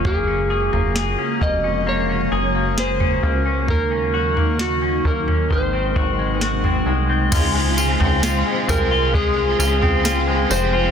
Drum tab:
CC |----------------|----------------|x---------------|
TB |----------------|----------------|x-x-x-x---x-x-x-|
SD |----o-------o---|----o-------o---|----o-------o---|
FT |o--o--o------o--|o--o--oo-----o--|o--o--o-o--o----|
BD |o-----o-------o-|o-----o-o-o-----|o-------o-------|